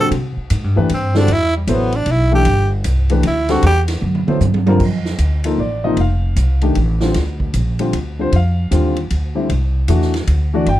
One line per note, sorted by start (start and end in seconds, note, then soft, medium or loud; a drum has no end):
0.00 0.10 A#2 medium
0.00 0.10 D3 medium
0.00 0.10 G3 medium
0.00 0.11 C4 medium
0.00 0.11 F#4 medium
0.00 0.11 A4 medium
0.00 0.08 A4 medium
0.11 0.35 C3 medium
0.11 ride medium
0.37 muted upright bass stroke soft
0.50 0.64 G#2 medium
0.50 hi-hat pedal medium
0.50 ride medium
0.64 0.76 G2 medium
0.76 0.89 E2 medium
0.76 0.88 E3 medium
0.76 0.88 A3 medium
0.76 0.89 D4 medium
0.76 0.89 G4 medium
0.76 0.89 B4 medium
0.89 1.27 G2 medium
0.89 ride medium
0.94 1.19 C4 medium
1.15 1.27 D3 medium
1.15 1.27 G3 medium
1.15 1.28 C4 medium
1.15 1.34 D4 medium
1.15 1.28 F#4 medium
1.15 1.28 A4 medium
1.15 snare medium
1.28 1.66 E2 medium
1.28 ride medium
1.33 1.56 E4 loud
1.57 1.73 G3 soft
1.67 2.05 A1 medium
1.67 1.91 F#3 medium
1.67 1.91 B3 medium
1.67 1.91 E4 medium
1.67 1.91 A4 medium
1.67 1.91 C5 medium
1.67 hi-hat pedal medium
1.67 ride medium
1.73 1.97 B3 medium
1.92 2.13 D4 medium
1.92 ride soft
2.06 2.44 B1 medium
2.06 ride medium
2.11 2.34 E4 medium
2.31 2.44 E3 medium
2.31 2.44 A3 medium
2.31 2.45 D4 medium
2.31 2.45 G4 medium
2.31 2.70 G4 medium
2.31 2.45 A4 medium
2.45 2.83 G1 medium
2.45 ride medium
2.84 3.23 C2 medium
2.84 hi-hat pedal medium
2.84 ride medium
3.10 3.22 E3 medium
3.10 3.23 A3 medium
3.10 3.23 D4 medium
3.10 3.23 G4 medium
3.10 3.23 B4 medium
3.10 ride soft
3.23 3.62 D2 medium
3.23 ride medium
3.27 3.52 E4 medium
3.49 3.61 D3 medium
3.49 3.62 G3 medium
3.49 3.62 C4 medium
3.49 3.62 F#4 medium
3.49 3.64 F#4 medium
3.49 3.62 A4 medium
3.49 snare soft
3.49 ride soft
3.62 4.01 E2 medium
3.62 ride medium
3.67 3.81 G4 loud
3.88 snare soft
3.88 ride medium
4.01 4.26 F#2 medium
4.01 mid tom soft
4.15 mid tom medium
4.27 4.40 F#3 medium
4.27 4.40 B3 medium
4.27 4.40 E4 medium
4.27 4.40 A4 medium
4.27 4.40 C5 medium
4.27 muted upright bass stroke soft
4.27 mid tom medium
4.40 4.79 G2 medium
4.40 hi-hat pedal medium
4.40 high tom medium
4.54 high tom medium
4.66 4.79 D3 medium
4.66 4.79 G3 medium
4.66 4.79 C4 medium
4.66 4.79 F4 medium
4.66 4.80 A#4 medium
4.66 high tom medium
4.80 5.18 F2 medium
4.80 kick medium
4.80 crash medium
5.05 snare soft
5.18 5.57 D2 medium
5.18 hi-hat pedal medium
5.18 ride medium
5.44 5.57 F3 medium
5.44 5.57 A#3 medium
5.44 5.57 D#4 medium
5.44 5.58 A4 medium
5.44 ride medium
5.58 5.96 A1 medium
5.58 5.84 D5 medium
5.84 5.96 C3 medium
5.84 5.96 F3 medium
5.84 5.97 A#3 medium
5.84 5.97 D#4 medium
5.84 5.97 D#5 medium
5.97 6.35 F1 medium
5.97 6.59 F5 medium
5.97 ride medium
6.36 6.74 C2 medium
6.36 hi-hat pedal medium
6.36 ride medium
6.61 6.74 D#3 medium
6.61 6.74 A3 medium
6.61 6.75 D4 medium
6.61 6.75 G4 medium
6.61 ride soft
6.75 7.14 A1 medium
6.75 ride medium
7.01 7.13 D3 medium
7.01 7.14 G3 medium
7.01 7.14 C4 medium
7.01 7.14 F4 medium
7.01 snare medium
7.14 7.53 D2 medium
7.14 snare soft
7.14 ride medium
7.40 kick soft
7.54 7.92 A#1 medium
7.54 hi-hat pedal medium
7.54 ride medium
7.79 7.92 D3 medium
7.79 7.92 G3 medium
7.79 7.92 C4 medium
7.79 7.92 F4 medium
7.79 ride soft
7.93 8.31 D2 medium
7.93 ride medium
8.19 8.31 D3 medium
8.19 8.31 G3 medium
8.19 8.31 C4 medium
8.19 8.32 F4 medium
8.19 8.33 C5 medium
8.32 8.70 F2 medium
8.32 8.94 F5 medium
8.32 ride medium
8.71 9.09 D#2 medium
8.71 8.94 D3 medium
8.71 8.94 G3 medium
8.71 8.94 C4 medium
8.71 8.95 F4 medium
8.71 hi-hat pedal soft
8.71 ride medium
8.96 ride soft
9.10 9.48 D2 medium
9.10 ride medium
9.35 9.48 D3 medium
9.35 9.48 G3 medium
9.35 9.48 C4 medium
9.35 9.48 E4 medium
9.50 9.87 C2 medium
9.50 ride medium
9.88 10.26 E2 medium
9.88 10.11 E3 medium
9.88 10.12 A3 medium
9.88 10.12 D4 medium
9.88 10.12 F#4 medium
9.88 hi-hat pedal soft
9.88 ride medium
10.02 snare soft
10.14 snare soft
10.14 ride soft
10.27 10.65 D2 medium
10.27 ride medium
10.54 10.66 E3 medium
10.54 10.66 A3 medium
10.54 10.66 D4 medium
10.54 10.66 F#4 medium
10.54 10.68 D5 medium
10.66 10.80 G1 medium
10.66 10.80 G5 medium
10.66 ride soft